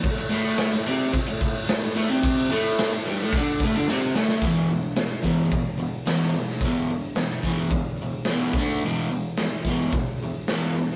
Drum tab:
CC |x-x-x-x-x-x-x-x-|x-x-x-x-x-x-----|----------------|----------------|
HH |----------------|----------------|o-o-o-o-o-o-o-o-|o-o-o-o-o-o-o-o-|
SD |----o-------o---|----o-------o-oo|----o-------o--o|----o-------o---|
BD |o-------o-o-----|o-------o-o-----|o-----o-o-------|o-----o-o-----o-|

CC |----------------|
HH |o-o-o-o-o-o-o-o-|
SD |----o-------o--o|
BD |------o-o-------|